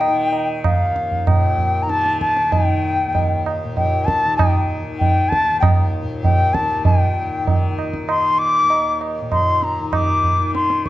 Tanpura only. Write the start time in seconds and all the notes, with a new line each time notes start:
Already playing: D#2 A#2 D#3
0.07 D#3
0.69 D#2
1.27 A#2
1.86 D#3
2.45 D#3
3.05 D#2
3.64 A#2
4.24 D#3
4.82 D#3
5.43 D#2
6.01 A#2
6.60 D#3
6.86 A#2
7.45 D#3
8.04 D#3
8.63 D#2
9.21 A#2
9.80 D#3
10.37 D#3